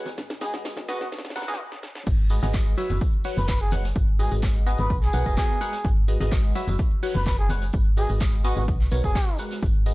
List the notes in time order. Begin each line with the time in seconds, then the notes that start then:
Already playing: F#1
0.06 snare, closed hi-hat, tambourine, high conga
0.18 G#1, snare, closed hi-hat, tambourine
0.30 snare, closed hi-hat, tambourine
0.41 G#3 F#4 G#4 B4 D#5, snare, closed hi-hat, open hi-hat, tambourine
0.54 G#1 G#3 F#4 G#4 B4 D#5, snare, closed hi-hat, tambourine
0.65 snare, closed hi-hat, tambourine
0.76 snare, closed hi-hat, tambourine, high conga
0.88 B3 F#4 G#4 B4 D#5, snare, closed hi-hat, open hi-hat, tambourine
1.01 G#1 F#4, snare, closed hi-hat, tambourine
1.12 B1, snare, closed hi-hat, tambourine
1.19 snare
1.25 snare, closed hi-hat, tambourine
1.30 snare
1.35 B1 B3 F#4 A#4 B4 F#5, snare, closed hi-hat, open hi-hat, tambourine, high conga
1.42 snare
1.48 F#1 B3 F#4 G#4 A#4 B4 D#5, snare, closed hi-hat, tambourine
1.54 snare
1.72 snare
1.83 snare
1.95 snare
2.06 G#1, kick, closed hi-hat, crash, tambourine
2.19 closed hi-hat
2.30 G#3 F#4 G#4 B4 D#5, closed hi-hat, open hi-hat, tambourine
2.43 G#1 G#3 F#4 G#4 B4 D#5, snare, closed hi-hat, tambourine, high conga
2.54 kick, snare, clap, closed hi-hat, tambourine
2.66 closed hi-hat
2.78 F#3 F#4 B4 C#5 E5, closed hi-hat, open hi-hat, tambourine
2.90 F#1, closed hi-hat, tambourine, high conga
3.01 kick, closed hi-hat, tambourine
3.13 closed hi-hat
3.24 F#3 F#4 B4 C#5 F#5, open hi-hat, tambourine
3.37 F#1 B4, closed hi-hat, tambourine, high conga
3.48 B4, kick, snare, clap, closed hi-hat
3.61 G#4, closed hi-hat
3.71 G#3 F#4 B4 C#5 F#5, snare, closed hi-hat, open hi-hat, tambourine, high conga
3.84 snare, closed hi-hat, tambourine
3.95 G#1, kick, closed hi-hat
4.08 closed hi-hat
4.19 G#3 F#4 G#4 B4 D#5, closed hi-hat, open hi-hat, tambourine
4.31 G#1 G#3 F#4 G#4 B4 D#5, closed hi-hat, tambourine
4.42 kick, snare, clap, closed hi-hat, tambourine
4.55 closed hi-hat
4.66 B3 F#4 G#4 B4 D#5, closed hi-hat, open hi-hat, tambourine
4.78 G#1 B4, closed hi-hat, tambourine, high conga
4.90 B1, kick, closed hi-hat, tambourine
5.02 G#4, clap, closed hi-hat
5.13 B1 B3 F#4 A#4 B4 F#5, closed hi-hat, open hi-hat, tambourine
5.26 F#1 B3 F#4 A#4 B4 D#5, kick, closed hi-hat, tambourine
5.37 G#4, kick, snare, clap, closed hi-hat, tambourine
5.50 closed hi-hat
5.61 G#3 F#4 A#4 B4 F#5, closed hi-hat, open hi-hat, tambourine
5.72 snare, closed hi-hat, tambourine
5.84 G#1, kick, closed hi-hat, tambourine
5.97 closed hi-hat
6.08 G#3 F#4 G#4 B4 D#5, closed hi-hat, open hi-hat, tambourine
6.20 G#1 G#3 F#4 G#4 B4 D#5, snare, closed hi-hat, tambourine, high conga
6.31 kick, snare, clap, closed hi-hat, tambourine
6.44 closed hi-hat
6.55 F#3 F#4 B4 C#5 E5, closed hi-hat, open hi-hat, tambourine
6.68 F#1, closed hi-hat, tambourine, high conga
6.79 kick, closed hi-hat, tambourine
6.91 closed hi-hat
7.03 F#3 F#4 B4 C#5 F#5, open hi-hat, tambourine
7.14 F#1 B4, closed hi-hat, tambourine, high conga
7.26 B4, kick, snare, clap, closed hi-hat, tambourine
7.38 G#4, closed hi-hat
7.49 G#3 F#4 B4 C#5 F#5, snare, closed hi-hat, open hi-hat, tambourine, high conga
7.61 snare, closed hi-hat, tambourine
7.73 G#1, kick, closed hi-hat, tambourine
7.86 closed hi-hat
7.96 G#3 F#4 G#4 B4 D#5, closed hi-hat, open hi-hat, tambourine
8.09 G#1 G#3 F#4 G#4 B4 D#5, closed hi-hat, tambourine
8.21 kick, snare, clap, closed hi-hat, tambourine
8.33 closed hi-hat
8.44 B3 F#4 G#4 B4 D#5, closed hi-hat, open hi-hat, tambourine
8.57 G#1 F#4, closed hi-hat, tambourine, high conga
8.68 B1, kick, closed hi-hat, tambourine
8.81 clap, closed hi-hat
8.91 B1 B3 F#4 A#4 B4 C#5, closed hi-hat, open hi-hat, tambourine
9.04 F#1 B3 F#4 G#4 A#4 B4 C#5, kick, closed hi-hat, tambourine
9.15 kick, snare, clap, closed hi-hat, tambourine
9.28 closed hi-hat
9.38 G#3 F#4 A#4 B4 F#5, closed hi-hat, open hi-hat, tambourine
9.51 snare, closed hi-hat, tambourine
9.63 G#1, kick, closed hi-hat, tambourine
9.75 closed hi-hat
9.86 G#3 F#4 G#4 B4 D#5, closed hi-hat, open hi-hat, tambourine